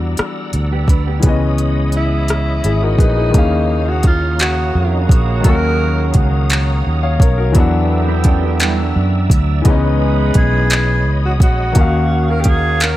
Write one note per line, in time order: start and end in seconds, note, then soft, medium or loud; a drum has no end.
0.00 0.14 E2 medium
0.00 1.18 E3 medium
0.00 1.22 G3 medium
0.00 1.20 B3 medium
0.00 1.21 D4 medium
0.00 1.22 F#4 medium
0.00 1.22 D5 medium
0.00 1.22 F#5 medium
0.00 1.20 A#5 medium
0.00 1.21 E6 medium
0.17 muted fretless electric bass stroke soft
0.17 cross-stick loud
0.17 closed hi-hat medium
0.53 1.20 D2 medium
0.53 closed hi-hat medium
0.72 0.88 B3 medium
0.72 0.88 G4 medium
0.88 1.06 D4 medium
0.88 1.06 B4 medium
0.88 kick medium
0.88 closed hi-hat medium
1.07 1.40 B3 medium
1.07 1.40 G4 medium
1.20 3.28 E3 medium
1.20 3.29 G#3 medium
1.20 3.32 C#5 medium
1.20 3.32 D#5 medium
1.20 3.32 B5 medium
1.20 3.32 D#6 medium
1.20 kick loud
1.20 closed hi-hat medium
1.24 2.60 C#2 medium
1.24 3.30 B3 medium
1.24 3.31 C#4 medium
1.29 2.64 D#5 medium
1.58 closed hi-hat soft
1.92 2.85 E4 medium
1.92 closed hi-hat soft
2.28 cross-stick medium
2.28 closed hi-hat medium
2.64 2.96 G#1 medium
2.64 2.81 E4 soft
2.64 2.81 G#4 medium
2.64 closed hi-hat medium
2.82 3.00 D#4 medium
2.82 2.99 F#4 soft
2.82 2.98 A#4 medium
2.99 3.31 A#1 medium
2.99 3.90 D#4 loud
2.99 3.15 G#4 medium
2.99 3.16 B4 medium
2.99 kick medium
2.99 closed hi-hat medium
3.17 3.50 E4 soft
3.17 3.50 G#4 soft
3.30 5.39 C#3 medium
3.30 5.38 D#3 medium
3.34 4.71 D#2 loud
3.34 5.41 A#3 medium
3.34 5.41 C#4 medium
3.34 7.51 C#5 medium
3.34 7.51 F5 medium
3.34 9.61 A#5 medium
3.34 7.51 D#6 medium
3.34 kick loud
3.34 closed hi-hat medium
3.38 5.42 F5 medium
3.89 4.05 F#4 medium
4.03 4.38 F4 loud
4.03 kick medium
4.03 closed hi-hat medium
4.39 7.16 C#3 medium
4.39 7.16 A#3 medium
4.39 7.16 F#4 medium
4.39 5.06 F#4 loud
4.39 clap loud
4.39 closed hi-hat medium
4.75 5.06 F2 medium
5.09 5.41 A#1 medium
5.09 kick loud
5.09 closed hi-hat medium
5.41 7.49 D#3 medium
5.41 7.50 F#3 medium
5.41 closed hi-hat medium
5.45 6.11 D#2 loud
5.45 7.51 A#3 medium
5.45 7.52 C#4 medium
5.45 6.20 A#4 loud
5.45 kick loud
5.49 6.50 F#4 medium
6.14 6.81 C#2 medium
6.14 kick medium
6.14 closed hi-hat medium
6.50 clap loud
6.50 closed hi-hat medium
6.87 7.17 D#2 medium
7.03 7.19 C#5 medium
7.03 7.19 F5 medium
7.20 7.56 B1 medium
7.20 7.36 A#4 medium
7.20 7.37 C#5 medium
7.20 kick medium
7.20 closed hi-hat medium
7.38 7.71 F#4 soft
7.38 7.71 A#4 medium
7.52 9.60 E3 medium
7.52 9.60 F#3 medium
7.52 9.62 B3 medium
7.52 9.64 D5 medium
7.52 kick loud
7.52 closed hi-hat medium
7.56 8.92 E2 loud
7.56 9.27 D3 medium
7.56 9.27 B3 medium
7.56 9.63 D4 medium
7.56 9.64 E5 medium
7.56 9.27 G5 medium
7.56 9.64 E6 medium
7.60 9.64 F#5 medium
8.08 8.25 D4 medium
8.08 8.24 B4 medium
8.24 8.42 C#4 medium
8.24 8.42 A4 medium
8.24 kick medium
8.24 closed hi-hat medium
8.42 8.59 B3 medium
8.42 8.59 G4 medium
8.60 8.77 G3 medium
8.60 8.77 E4 medium
8.60 clap medium
8.60 closed hi-hat medium
8.78 9.62 F#3 medium
8.78 9.62 D4 medium
8.96 9.27 F#2 medium
9.30 9.62 D2 loud
9.30 kick medium
9.30 closed hi-hat medium
9.62 11.70 E3 medium
9.62 11.71 G#3 medium
9.62 12.97 C#5 medium
9.62 11.74 D#5 medium
9.62 11.74 B5 medium
9.62 12.97 D#6 medium
9.62 kick loud
9.62 closed hi-hat medium
9.66 10.32 C#2 medium
9.66 11.38 G#3 medium
9.66 11.72 B3 medium
9.66 11.73 C#4 medium
9.66 11.38 E4 medium
9.66 11.38 B4 medium
9.70 11.74 D#4 medium
10.34 11.07 B1 medium
10.34 11.20 G#4 medium
10.34 kick medium
10.34 closed hi-hat medium
10.70 clap loud
10.70 closed hi-hat medium
11.07 11.41 C#2 medium
11.26 11.33 F#4 medium
11.40 11.73 A#1 medium
11.40 12.32 F#4 medium
11.40 kick loud
11.40 closed hi-hat medium
11.72 12.97 D#3 medium
11.72 12.97 F#4 medium
11.72 12.97 F5 medium
11.72 kick loud
11.72 closed hi-hat medium
11.76 12.97 D#2 loud
11.76 12.97 A#3 medium
11.76 12.97 C#4 medium
11.76 12.97 F#4 medium
11.76 12.97 A#4 medium
11.76 12.97 F5 medium
11.80 12.97 F5 medium
12.31 12.42 A#4 loud
12.41 12.50 G4 medium
12.41 closed hi-hat medium
12.46 12.84 G#4 loud
12.46 kick medium
12.80 12.97 A#4 loud
12.80 clap loud
12.80 closed hi-hat medium